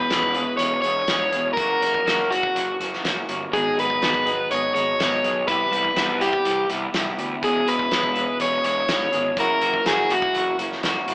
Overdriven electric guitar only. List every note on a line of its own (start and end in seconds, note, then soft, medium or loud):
0.00 0.57 B4 loud
0.57 0.81 C#5 loud
0.82 1.53 C#5 medium
1.53 2.31 A#4 medium
2.30 2.76 F#4 medium
3.53 3.76 G#4 medium
3.80 4.51 B4 medium
4.51 4.73 C#5 loud
4.75 5.47 C#5 medium
5.48 6.23 B4 medium
6.21 6.67 G4 medium
7.44 7.69 G#4 medium
7.68 8.37 B4 medium
8.42 8.64 C#5 medium
8.66 9.40 C#5 medium
9.40 9.87 A#4 medium
9.87 10.12 G#4 medium
10.11 10.56 F#4 medium